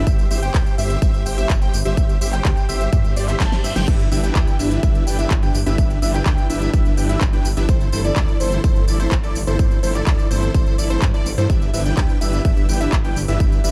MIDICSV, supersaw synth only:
0, 0, Header, 1, 2, 480
1, 0, Start_track
1, 0, Key_signature, 1, "major"
1, 0, Tempo, 476190
1, 69, Time_signature, 4, 2, 24, 8
1, 13823, End_track
2, 0, Start_track
2, 0, Title_t, "Supersaw synth"
2, 0, Program_c, 0, 81
2, 69, Note_on_c, 0, 67, 77
2, 69, Note_on_c, 0, 72, 68
2, 69, Note_on_c, 0, 76, 81
2, 273, Note_off_c, 0, 67, 0
2, 273, Note_off_c, 0, 72, 0
2, 273, Note_off_c, 0, 76, 0
2, 309, Note_on_c, 0, 67, 98
2, 309, Note_on_c, 0, 72, 90
2, 309, Note_on_c, 0, 76, 101
2, 400, Note_off_c, 0, 67, 0
2, 400, Note_off_c, 0, 72, 0
2, 400, Note_off_c, 0, 76, 0
2, 429, Note_on_c, 0, 67, 81
2, 429, Note_on_c, 0, 72, 76
2, 429, Note_on_c, 0, 79, 90
2, 520, Note_off_c, 0, 67, 0
2, 520, Note_off_c, 0, 72, 0
2, 520, Note_off_c, 0, 79, 0
2, 549, Note_on_c, 0, 67, 92
2, 549, Note_on_c, 0, 72, 89
2, 549, Note_on_c, 0, 79, 107
2, 760, Note_off_c, 0, 67, 0
2, 760, Note_off_c, 0, 72, 0
2, 760, Note_off_c, 0, 79, 0
2, 788, Note_on_c, 0, 67, 91
2, 788, Note_on_c, 0, 72, 82
2, 788, Note_on_c, 0, 76, 101
2, 1000, Note_off_c, 0, 67, 0
2, 1000, Note_off_c, 0, 72, 0
2, 1000, Note_off_c, 0, 76, 0
2, 1028, Note_on_c, 0, 67, 93
2, 1028, Note_on_c, 0, 72, 91
2, 1028, Note_on_c, 0, 76, 108
2, 1240, Note_off_c, 0, 67, 0
2, 1240, Note_off_c, 0, 72, 0
2, 1240, Note_off_c, 0, 76, 0
2, 1268, Note_on_c, 0, 67, 72
2, 1268, Note_on_c, 0, 72, 65
2, 1268, Note_on_c, 0, 79, 82
2, 1370, Note_off_c, 0, 72, 0
2, 1371, Note_off_c, 0, 67, 0
2, 1371, Note_off_c, 0, 79, 0
2, 1388, Note_on_c, 0, 67, 92
2, 1388, Note_on_c, 0, 72, 81
2, 1388, Note_on_c, 0, 76, 103
2, 1540, Note_off_c, 0, 67, 0
2, 1540, Note_off_c, 0, 72, 0
2, 1540, Note_off_c, 0, 76, 0
2, 1628, Note_on_c, 0, 67, 97
2, 1628, Note_on_c, 0, 72, 86
2, 1628, Note_on_c, 0, 79, 108
2, 1780, Note_off_c, 0, 67, 0
2, 1780, Note_off_c, 0, 72, 0
2, 1780, Note_off_c, 0, 79, 0
2, 1868, Note_on_c, 0, 67, 90
2, 1868, Note_on_c, 0, 72, 76
2, 1868, Note_on_c, 0, 76, 98
2, 1970, Note_off_c, 0, 67, 0
2, 1970, Note_off_c, 0, 72, 0
2, 1970, Note_off_c, 0, 76, 0
2, 1988, Note_on_c, 0, 67, 74
2, 1988, Note_on_c, 0, 76, 81
2, 1989, Note_on_c, 0, 72, 64
2, 2193, Note_off_c, 0, 67, 0
2, 2193, Note_off_c, 0, 72, 0
2, 2193, Note_off_c, 0, 76, 0
2, 2229, Note_on_c, 0, 67, 97
2, 2229, Note_on_c, 0, 72, 89
2, 2229, Note_on_c, 0, 76, 112
2, 2320, Note_off_c, 0, 67, 0
2, 2320, Note_off_c, 0, 72, 0
2, 2320, Note_off_c, 0, 76, 0
2, 2349, Note_on_c, 0, 67, 87
2, 2349, Note_on_c, 0, 72, 75
2, 2349, Note_on_c, 0, 79, 94
2, 2440, Note_off_c, 0, 67, 0
2, 2440, Note_off_c, 0, 72, 0
2, 2440, Note_off_c, 0, 79, 0
2, 2469, Note_on_c, 0, 67, 97
2, 2469, Note_on_c, 0, 72, 87
2, 2469, Note_on_c, 0, 79, 105
2, 2680, Note_off_c, 0, 67, 0
2, 2680, Note_off_c, 0, 72, 0
2, 2680, Note_off_c, 0, 79, 0
2, 2709, Note_on_c, 0, 67, 87
2, 2709, Note_on_c, 0, 72, 81
2, 2709, Note_on_c, 0, 76, 95
2, 2920, Note_off_c, 0, 67, 0
2, 2920, Note_off_c, 0, 72, 0
2, 2920, Note_off_c, 0, 76, 0
2, 2949, Note_on_c, 0, 67, 98
2, 2949, Note_on_c, 0, 72, 87
2, 2949, Note_on_c, 0, 76, 110
2, 3160, Note_off_c, 0, 67, 0
2, 3160, Note_off_c, 0, 72, 0
2, 3160, Note_off_c, 0, 76, 0
2, 3189, Note_on_c, 0, 67, 88
2, 3189, Note_on_c, 0, 72, 88
2, 3189, Note_on_c, 0, 74, 108
2, 3280, Note_off_c, 0, 67, 0
2, 3280, Note_off_c, 0, 72, 0
2, 3280, Note_off_c, 0, 74, 0
2, 3309, Note_on_c, 0, 67, 91
2, 3309, Note_on_c, 0, 72, 88
2, 3309, Note_on_c, 0, 76, 100
2, 3411, Note_off_c, 0, 67, 0
2, 3411, Note_off_c, 0, 72, 0
2, 3411, Note_off_c, 0, 76, 0
2, 3429, Note_on_c, 0, 67, 89
2, 3429, Note_on_c, 0, 72, 83
2, 3429, Note_on_c, 0, 81, 103
2, 3640, Note_off_c, 0, 67, 0
2, 3640, Note_off_c, 0, 72, 0
2, 3640, Note_off_c, 0, 81, 0
2, 3669, Note_on_c, 0, 67, 77
2, 3669, Note_on_c, 0, 72, 76
2, 3669, Note_on_c, 0, 76, 88
2, 3760, Note_off_c, 0, 67, 0
2, 3760, Note_off_c, 0, 72, 0
2, 3760, Note_off_c, 0, 76, 0
2, 3789, Note_on_c, 0, 67, 87
2, 3789, Note_on_c, 0, 72, 82
2, 3789, Note_on_c, 0, 79, 104
2, 3880, Note_off_c, 0, 67, 0
2, 3880, Note_off_c, 0, 72, 0
2, 3880, Note_off_c, 0, 79, 0
2, 3909, Note_on_c, 0, 62, 76
2, 3909, Note_on_c, 0, 64, 63
2, 3909, Note_on_c, 0, 67, 66
2, 3909, Note_on_c, 0, 71, 67
2, 3909, Note_on_c, 0, 76, 77
2, 4113, Note_off_c, 0, 62, 0
2, 4113, Note_off_c, 0, 64, 0
2, 4113, Note_off_c, 0, 67, 0
2, 4113, Note_off_c, 0, 71, 0
2, 4113, Note_off_c, 0, 76, 0
2, 4149, Note_on_c, 0, 62, 99
2, 4149, Note_on_c, 0, 64, 86
2, 4149, Note_on_c, 0, 67, 93
2, 4149, Note_on_c, 0, 71, 92
2, 4149, Note_on_c, 0, 76, 112
2, 4240, Note_off_c, 0, 62, 0
2, 4240, Note_off_c, 0, 64, 0
2, 4240, Note_off_c, 0, 67, 0
2, 4240, Note_off_c, 0, 71, 0
2, 4240, Note_off_c, 0, 76, 0
2, 4269, Note_on_c, 0, 62, 85
2, 4269, Note_on_c, 0, 64, 76
2, 4269, Note_on_c, 0, 67, 76
2, 4269, Note_on_c, 0, 71, 76
2, 4269, Note_on_c, 0, 79, 87
2, 4360, Note_off_c, 0, 62, 0
2, 4360, Note_off_c, 0, 64, 0
2, 4360, Note_off_c, 0, 67, 0
2, 4360, Note_off_c, 0, 71, 0
2, 4360, Note_off_c, 0, 79, 0
2, 4389, Note_on_c, 0, 62, 92
2, 4389, Note_on_c, 0, 64, 84
2, 4389, Note_on_c, 0, 67, 88
2, 4389, Note_on_c, 0, 71, 82
2, 4389, Note_on_c, 0, 79, 99
2, 4600, Note_off_c, 0, 62, 0
2, 4600, Note_off_c, 0, 64, 0
2, 4600, Note_off_c, 0, 67, 0
2, 4600, Note_off_c, 0, 71, 0
2, 4600, Note_off_c, 0, 79, 0
2, 4629, Note_on_c, 0, 62, 89
2, 4629, Note_on_c, 0, 64, 78
2, 4629, Note_on_c, 0, 67, 82
2, 4629, Note_on_c, 0, 71, 78
2, 4629, Note_on_c, 0, 76, 98
2, 4840, Note_off_c, 0, 62, 0
2, 4840, Note_off_c, 0, 64, 0
2, 4840, Note_off_c, 0, 67, 0
2, 4840, Note_off_c, 0, 71, 0
2, 4840, Note_off_c, 0, 76, 0
2, 4869, Note_on_c, 0, 62, 96
2, 4869, Note_on_c, 0, 64, 92
2, 4869, Note_on_c, 0, 67, 92
2, 4869, Note_on_c, 0, 71, 90
2, 4869, Note_on_c, 0, 76, 107
2, 5080, Note_off_c, 0, 62, 0
2, 5080, Note_off_c, 0, 64, 0
2, 5080, Note_off_c, 0, 67, 0
2, 5080, Note_off_c, 0, 71, 0
2, 5080, Note_off_c, 0, 76, 0
2, 5109, Note_on_c, 0, 62, 69
2, 5109, Note_on_c, 0, 64, 66
2, 5109, Note_on_c, 0, 67, 67
2, 5109, Note_on_c, 0, 71, 71
2, 5109, Note_on_c, 0, 79, 83
2, 5211, Note_off_c, 0, 62, 0
2, 5211, Note_off_c, 0, 64, 0
2, 5211, Note_off_c, 0, 67, 0
2, 5211, Note_off_c, 0, 71, 0
2, 5211, Note_off_c, 0, 79, 0
2, 5229, Note_on_c, 0, 62, 87
2, 5229, Note_on_c, 0, 64, 84
2, 5229, Note_on_c, 0, 67, 82
2, 5229, Note_on_c, 0, 71, 89
2, 5229, Note_on_c, 0, 76, 103
2, 5380, Note_off_c, 0, 62, 0
2, 5380, Note_off_c, 0, 71, 0
2, 5381, Note_off_c, 0, 64, 0
2, 5381, Note_off_c, 0, 67, 0
2, 5381, Note_off_c, 0, 76, 0
2, 5468, Note_on_c, 0, 62, 100
2, 5468, Note_on_c, 0, 64, 88
2, 5468, Note_on_c, 0, 67, 88
2, 5468, Note_on_c, 0, 71, 92
2, 5468, Note_on_c, 0, 79, 107
2, 5620, Note_off_c, 0, 62, 0
2, 5620, Note_off_c, 0, 64, 0
2, 5620, Note_off_c, 0, 67, 0
2, 5620, Note_off_c, 0, 71, 0
2, 5620, Note_off_c, 0, 79, 0
2, 5708, Note_on_c, 0, 62, 91
2, 5708, Note_on_c, 0, 64, 80
2, 5708, Note_on_c, 0, 67, 80
2, 5708, Note_on_c, 0, 71, 82
2, 5708, Note_on_c, 0, 76, 97
2, 5811, Note_off_c, 0, 62, 0
2, 5811, Note_off_c, 0, 64, 0
2, 5811, Note_off_c, 0, 67, 0
2, 5811, Note_off_c, 0, 71, 0
2, 5811, Note_off_c, 0, 76, 0
2, 5828, Note_on_c, 0, 62, 76
2, 5828, Note_on_c, 0, 64, 70
2, 5828, Note_on_c, 0, 71, 66
2, 5829, Note_on_c, 0, 67, 70
2, 5829, Note_on_c, 0, 76, 82
2, 6033, Note_off_c, 0, 62, 0
2, 6033, Note_off_c, 0, 64, 0
2, 6033, Note_off_c, 0, 67, 0
2, 6033, Note_off_c, 0, 71, 0
2, 6033, Note_off_c, 0, 76, 0
2, 6069, Note_on_c, 0, 62, 97
2, 6069, Note_on_c, 0, 64, 83
2, 6069, Note_on_c, 0, 67, 91
2, 6069, Note_on_c, 0, 71, 84
2, 6069, Note_on_c, 0, 76, 107
2, 6160, Note_off_c, 0, 62, 0
2, 6160, Note_off_c, 0, 64, 0
2, 6160, Note_off_c, 0, 67, 0
2, 6160, Note_off_c, 0, 71, 0
2, 6160, Note_off_c, 0, 76, 0
2, 6189, Note_on_c, 0, 62, 80
2, 6189, Note_on_c, 0, 64, 74
2, 6189, Note_on_c, 0, 67, 73
2, 6189, Note_on_c, 0, 71, 77
2, 6189, Note_on_c, 0, 79, 90
2, 6280, Note_off_c, 0, 62, 0
2, 6280, Note_off_c, 0, 64, 0
2, 6280, Note_off_c, 0, 67, 0
2, 6280, Note_off_c, 0, 71, 0
2, 6280, Note_off_c, 0, 79, 0
2, 6309, Note_on_c, 0, 62, 91
2, 6309, Note_on_c, 0, 64, 85
2, 6309, Note_on_c, 0, 67, 90
2, 6309, Note_on_c, 0, 71, 86
2, 6309, Note_on_c, 0, 79, 102
2, 6520, Note_off_c, 0, 62, 0
2, 6520, Note_off_c, 0, 64, 0
2, 6520, Note_off_c, 0, 67, 0
2, 6520, Note_off_c, 0, 71, 0
2, 6520, Note_off_c, 0, 79, 0
2, 6549, Note_on_c, 0, 62, 92
2, 6549, Note_on_c, 0, 64, 82
2, 6549, Note_on_c, 0, 67, 81
2, 6549, Note_on_c, 0, 71, 81
2, 6549, Note_on_c, 0, 76, 100
2, 6760, Note_off_c, 0, 62, 0
2, 6760, Note_off_c, 0, 64, 0
2, 6760, Note_off_c, 0, 67, 0
2, 6760, Note_off_c, 0, 71, 0
2, 6760, Note_off_c, 0, 76, 0
2, 6788, Note_on_c, 0, 64, 91
2, 6788, Note_on_c, 0, 71, 91
2, 6788, Note_on_c, 0, 76, 111
2, 6789, Note_on_c, 0, 62, 97
2, 6789, Note_on_c, 0, 67, 92
2, 7000, Note_off_c, 0, 62, 0
2, 7000, Note_off_c, 0, 64, 0
2, 7000, Note_off_c, 0, 67, 0
2, 7000, Note_off_c, 0, 71, 0
2, 7000, Note_off_c, 0, 76, 0
2, 7029, Note_on_c, 0, 62, 76
2, 7029, Note_on_c, 0, 64, 67
2, 7029, Note_on_c, 0, 67, 64
2, 7029, Note_on_c, 0, 71, 70
2, 7029, Note_on_c, 0, 79, 79
2, 7131, Note_off_c, 0, 62, 0
2, 7131, Note_off_c, 0, 64, 0
2, 7131, Note_off_c, 0, 67, 0
2, 7131, Note_off_c, 0, 71, 0
2, 7131, Note_off_c, 0, 79, 0
2, 7149, Note_on_c, 0, 64, 84
2, 7149, Note_on_c, 0, 67, 82
2, 7149, Note_on_c, 0, 71, 90
2, 7149, Note_on_c, 0, 76, 104
2, 7150, Note_on_c, 0, 62, 96
2, 7301, Note_off_c, 0, 62, 0
2, 7301, Note_off_c, 0, 64, 0
2, 7301, Note_off_c, 0, 67, 0
2, 7301, Note_off_c, 0, 71, 0
2, 7301, Note_off_c, 0, 76, 0
2, 7389, Note_on_c, 0, 62, 98
2, 7389, Note_on_c, 0, 64, 88
2, 7389, Note_on_c, 0, 67, 85
2, 7389, Note_on_c, 0, 71, 87
2, 7389, Note_on_c, 0, 79, 104
2, 7541, Note_off_c, 0, 62, 0
2, 7541, Note_off_c, 0, 64, 0
2, 7541, Note_off_c, 0, 67, 0
2, 7541, Note_off_c, 0, 71, 0
2, 7541, Note_off_c, 0, 79, 0
2, 7629, Note_on_c, 0, 62, 88
2, 7629, Note_on_c, 0, 67, 81
2, 7629, Note_on_c, 0, 71, 81
2, 7630, Note_on_c, 0, 64, 83
2, 7630, Note_on_c, 0, 76, 97
2, 7731, Note_off_c, 0, 62, 0
2, 7731, Note_off_c, 0, 64, 0
2, 7731, Note_off_c, 0, 67, 0
2, 7731, Note_off_c, 0, 71, 0
2, 7731, Note_off_c, 0, 76, 0
2, 7749, Note_on_c, 0, 64, 73
2, 7749, Note_on_c, 0, 69, 66
2, 7749, Note_on_c, 0, 72, 85
2, 7953, Note_off_c, 0, 64, 0
2, 7953, Note_off_c, 0, 69, 0
2, 7953, Note_off_c, 0, 72, 0
2, 7989, Note_on_c, 0, 64, 102
2, 7989, Note_on_c, 0, 69, 90
2, 7989, Note_on_c, 0, 72, 106
2, 8080, Note_off_c, 0, 64, 0
2, 8080, Note_off_c, 0, 69, 0
2, 8080, Note_off_c, 0, 72, 0
2, 8109, Note_on_c, 0, 64, 84
2, 8109, Note_on_c, 0, 69, 75
2, 8109, Note_on_c, 0, 74, 87
2, 8200, Note_off_c, 0, 64, 0
2, 8200, Note_off_c, 0, 69, 0
2, 8200, Note_off_c, 0, 74, 0
2, 8229, Note_on_c, 0, 69, 84
2, 8229, Note_on_c, 0, 74, 106
2, 8230, Note_on_c, 0, 64, 91
2, 8440, Note_off_c, 0, 64, 0
2, 8440, Note_off_c, 0, 69, 0
2, 8440, Note_off_c, 0, 74, 0
2, 8469, Note_on_c, 0, 64, 93
2, 8469, Note_on_c, 0, 69, 84
2, 8469, Note_on_c, 0, 72, 99
2, 8680, Note_off_c, 0, 64, 0
2, 8680, Note_off_c, 0, 69, 0
2, 8680, Note_off_c, 0, 72, 0
2, 8708, Note_on_c, 0, 64, 105
2, 8709, Note_on_c, 0, 69, 96
2, 8709, Note_on_c, 0, 72, 111
2, 8920, Note_off_c, 0, 64, 0
2, 8920, Note_off_c, 0, 69, 0
2, 8920, Note_off_c, 0, 72, 0
2, 8949, Note_on_c, 0, 64, 74
2, 8949, Note_on_c, 0, 69, 66
2, 8949, Note_on_c, 0, 74, 82
2, 9051, Note_off_c, 0, 64, 0
2, 9051, Note_off_c, 0, 69, 0
2, 9051, Note_off_c, 0, 74, 0
2, 9069, Note_on_c, 0, 64, 91
2, 9069, Note_on_c, 0, 69, 87
2, 9069, Note_on_c, 0, 72, 104
2, 9220, Note_off_c, 0, 64, 0
2, 9220, Note_off_c, 0, 69, 0
2, 9220, Note_off_c, 0, 72, 0
2, 9308, Note_on_c, 0, 64, 98
2, 9309, Note_on_c, 0, 69, 90
2, 9309, Note_on_c, 0, 74, 106
2, 9460, Note_off_c, 0, 64, 0
2, 9460, Note_off_c, 0, 69, 0
2, 9460, Note_off_c, 0, 74, 0
2, 9548, Note_on_c, 0, 64, 88
2, 9548, Note_on_c, 0, 69, 80
2, 9548, Note_on_c, 0, 72, 100
2, 9651, Note_off_c, 0, 64, 0
2, 9651, Note_off_c, 0, 69, 0
2, 9651, Note_off_c, 0, 72, 0
2, 9668, Note_on_c, 0, 64, 76
2, 9668, Note_on_c, 0, 69, 68
2, 9668, Note_on_c, 0, 72, 79
2, 9872, Note_off_c, 0, 64, 0
2, 9872, Note_off_c, 0, 69, 0
2, 9872, Note_off_c, 0, 72, 0
2, 9908, Note_on_c, 0, 64, 98
2, 9908, Note_on_c, 0, 69, 89
2, 9908, Note_on_c, 0, 72, 105
2, 10000, Note_off_c, 0, 64, 0
2, 10000, Note_off_c, 0, 69, 0
2, 10000, Note_off_c, 0, 72, 0
2, 10028, Note_on_c, 0, 64, 79
2, 10028, Note_on_c, 0, 69, 80
2, 10028, Note_on_c, 0, 74, 88
2, 10120, Note_off_c, 0, 64, 0
2, 10120, Note_off_c, 0, 69, 0
2, 10120, Note_off_c, 0, 74, 0
2, 10149, Note_on_c, 0, 64, 99
2, 10149, Note_on_c, 0, 69, 86
2, 10149, Note_on_c, 0, 74, 109
2, 10360, Note_off_c, 0, 64, 0
2, 10360, Note_off_c, 0, 69, 0
2, 10360, Note_off_c, 0, 74, 0
2, 10388, Note_on_c, 0, 64, 89
2, 10388, Note_on_c, 0, 69, 82
2, 10388, Note_on_c, 0, 72, 97
2, 10600, Note_off_c, 0, 64, 0
2, 10600, Note_off_c, 0, 69, 0
2, 10600, Note_off_c, 0, 72, 0
2, 10628, Note_on_c, 0, 64, 100
2, 10628, Note_on_c, 0, 69, 89
2, 10628, Note_on_c, 0, 72, 109
2, 10840, Note_off_c, 0, 64, 0
2, 10840, Note_off_c, 0, 69, 0
2, 10840, Note_off_c, 0, 72, 0
2, 10868, Note_on_c, 0, 69, 68
2, 10869, Note_on_c, 0, 64, 72
2, 10869, Note_on_c, 0, 74, 84
2, 10971, Note_off_c, 0, 64, 0
2, 10971, Note_off_c, 0, 69, 0
2, 10971, Note_off_c, 0, 74, 0
2, 10989, Note_on_c, 0, 64, 96
2, 10989, Note_on_c, 0, 69, 85
2, 10989, Note_on_c, 0, 72, 106
2, 11140, Note_off_c, 0, 64, 0
2, 11141, Note_off_c, 0, 69, 0
2, 11141, Note_off_c, 0, 72, 0
2, 11228, Note_on_c, 0, 64, 97
2, 11228, Note_on_c, 0, 69, 92
2, 11228, Note_on_c, 0, 74, 104
2, 11380, Note_off_c, 0, 64, 0
2, 11380, Note_off_c, 0, 69, 0
2, 11380, Note_off_c, 0, 74, 0
2, 11469, Note_on_c, 0, 64, 88
2, 11469, Note_on_c, 0, 69, 83
2, 11469, Note_on_c, 0, 72, 98
2, 11571, Note_off_c, 0, 64, 0
2, 11571, Note_off_c, 0, 69, 0
2, 11571, Note_off_c, 0, 72, 0
2, 11589, Note_on_c, 0, 62, 70
2, 11589, Note_on_c, 0, 64, 68
2, 11589, Note_on_c, 0, 67, 69
2, 11589, Note_on_c, 0, 71, 70
2, 11589, Note_on_c, 0, 76, 81
2, 11793, Note_off_c, 0, 62, 0
2, 11793, Note_off_c, 0, 64, 0
2, 11793, Note_off_c, 0, 67, 0
2, 11793, Note_off_c, 0, 71, 0
2, 11793, Note_off_c, 0, 76, 0
2, 11828, Note_on_c, 0, 62, 95
2, 11828, Note_on_c, 0, 67, 84
2, 11828, Note_on_c, 0, 71, 91
2, 11828, Note_on_c, 0, 76, 107
2, 11829, Note_on_c, 0, 64, 84
2, 11920, Note_off_c, 0, 62, 0
2, 11920, Note_off_c, 0, 64, 0
2, 11920, Note_off_c, 0, 67, 0
2, 11920, Note_off_c, 0, 71, 0
2, 11920, Note_off_c, 0, 76, 0
2, 11949, Note_on_c, 0, 62, 83
2, 11949, Note_on_c, 0, 64, 72
2, 11949, Note_on_c, 0, 67, 76
2, 11949, Note_on_c, 0, 71, 72
2, 11949, Note_on_c, 0, 79, 93
2, 12040, Note_off_c, 0, 62, 0
2, 12040, Note_off_c, 0, 64, 0
2, 12040, Note_off_c, 0, 67, 0
2, 12040, Note_off_c, 0, 71, 0
2, 12040, Note_off_c, 0, 79, 0
2, 12069, Note_on_c, 0, 62, 92
2, 12069, Note_on_c, 0, 64, 82
2, 12069, Note_on_c, 0, 67, 88
2, 12069, Note_on_c, 0, 71, 81
2, 12069, Note_on_c, 0, 79, 108
2, 12280, Note_off_c, 0, 62, 0
2, 12280, Note_off_c, 0, 64, 0
2, 12280, Note_off_c, 0, 67, 0
2, 12280, Note_off_c, 0, 71, 0
2, 12280, Note_off_c, 0, 79, 0
2, 12309, Note_on_c, 0, 62, 93
2, 12309, Note_on_c, 0, 64, 78
2, 12309, Note_on_c, 0, 67, 82
2, 12309, Note_on_c, 0, 71, 84
2, 12309, Note_on_c, 0, 76, 99
2, 12520, Note_off_c, 0, 62, 0
2, 12520, Note_off_c, 0, 64, 0
2, 12520, Note_off_c, 0, 67, 0
2, 12520, Note_off_c, 0, 71, 0
2, 12520, Note_off_c, 0, 76, 0
2, 12548, Note_on_c, 0, 62, 98
2, 12548, Note_on_c, 0, 64, 90
2, 12548, Note_on_c, 0, 71, 89
2, 12549, Note_on_c, 0, 67, 93
2, 12549, Note_on_c, 0, 76, 113
2, 12760, Note_off_c, 0, 62, 0
2, 12760, Note_off_c, 0, 64, 0
2, 12760, Note_off_c, 0, 67, 0
2, 12760, Note_off_c, 0, 71, 0
2, 12760, Note_off_c, 0, 76, 0
2, 12788, Note_on_c, 0, 71, 69
2, 12789, Note_on_c, 0, 62, 71
2, 12789, Note_on_c, 0, 64, 65
2, 12789, Note_on_c, 0, 67, 68
2, 12789, Note_on_c, 0, 79, 81
2, 12891, Note_off_c, 0, 62, 0
2, 12891, Note_off_c, 0, 64, 0
2, 12891, Note_off_c, 0, 67, 0
2, 12891, Note_off_c, 0, 71, 0
2, 12891, Note_off_c, 0, 79, 0
2, 12908, Note_on_c, 0, 62, 91
2, 12908, Note_on_c, 0, 64, 88
2, 12908, Note_on_c, 0, 67, 85
2, 12908, Note_on_c, 0, 71, 85
2, 12908, Note_on_c, 0, 76, 101
2, 13060, Note_off_c, 0, 62, 0
2, 13060, Note_off_c, 0, 64, 0
2, 13060, Note_off_c, 0, 67, 0
2, 13060, Note_off_c, 0, 71, 0
2, 13060, Note_off_c, 0, 76, 0
2, 13148, Note_on_c, 0, 67, 93
2, 13148, Note_on_c, 0, 79, 109
2, 13149, Note_on_c, 0, 62, 97
2, 13149, Note_on_c, 0, 64, 92
2, 13149, Note_on_c, 0, 71, 85
2, 13300, Note_off_c, 0, 62, 0
2, 13300, Note_off_c, 0, 64, 0
2, 13300, Note_off_c, 0, 67, 0
2, 13300, Note_off_c, 0, 71, 0
2, 13300, Note_off_c, 0, 79, 0
2, 13388, Note_on_c, 0, 67, 80
2, 13389, Note_on_c, 0, 62, 84
2, 13389, Note_on_c, 0, 64, 82
2, 13389, Note_on_c, 0, 71, 81
2, 13389, Note_on_c, 0, 76, 95
2, 13491, Note_off_c, 0, 62, 0
2, 13491, Note_off_c, 0, 64, 0
2, 13491, Note_off_c, 0, 67, 0
2, 13491, Note_off_c, 0, 71, 0
2, 13491, Note_off_c, 0, 76, 0
2, 13509, Note_on_c, 0, 62, 74
2, 13509, Note_on_c, 0, 64, 68
2, 13509, Note_on_c, 0, 67, 70
2, 13509, Note_on_c, 0, 71, 67
2, 13509, Note_on_c, 0, 76, 77
2, 13713, Note_off_c, 0, 62, 0
2, 13713, Note_off_c, 0, 64, 0
2, 13713, Note_off_c, 0, 67, 0
2, 13713, Note_off_c, 0, 71, 0
2, 13713, Note_off_c, 0, 76, 0
2, 13748, Note_on_c, 0, 62, 99
2, 13748, Note_on_c, 0, 64, 87
2, 13748, Note_on_c, 0, 67, 87
2, 13748, Note_on_c, 0, 71, 90
2, 13748, Note_on_c, 0, 76, 109
2, 13823, Note_off_c, 0, 62, 0
2, 13823, Note_off_c, 0, 64, 0
2, 13823, Note_off_c, 0, 67, 0
2, 13823, Note_off_c, 0, 71, 0
2, 13823, Note_off_c, 0, 76, 0
2, 13823, End_track
0, 0, End_of_file